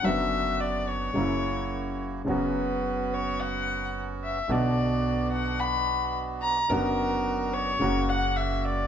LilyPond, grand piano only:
\new Staff \with { instrumentName = "Grand piano" } { \clef bass \time 4/4 \key b \minor \tempo 4 = 108 <fis, d fis b fis'>2 <fis, cis fis ais e'>2 | <fis, cis fis b fis'>1 | <b,, b, d fis b fis'>1 | <fis, d fis b fis'>2 <fis, cis fis ais fis'>2 | }